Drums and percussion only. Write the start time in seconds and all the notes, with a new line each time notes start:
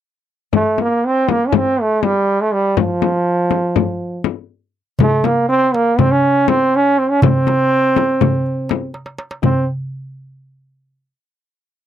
0.53 frame drum
0.78 frame drum
1.29 frame drum
1.52 frame drum
2.03 frame drum
2.77 frame drum
3.02 frame drum
3.51 frame drum
3.76 frame drum
4.24 frame drum
4.99 darbuka dum, frame drum
5.24 darbuka tek, frame drum
5.50 darbuka ka
5.75 darbuka tek
5.99 frame drum, darbuka dum
6.48 darbuka tek, frame drum
6.74 darbuka ka
7.22 darbuka dum, frame drum
7.47 darbuka tek, frame drum
7.74 darbuka ka
7.96 darbuka tek, frame drum
8.21 frame drum, darbuka dum
8.46 darbuka ka
8.69 darbuka tek, frame drum
8.94 darbuka tek
9.06 darbuka ka
9.19 darbuka tek
9.31 darbuka ka
9.43 frame drum, darbuka dum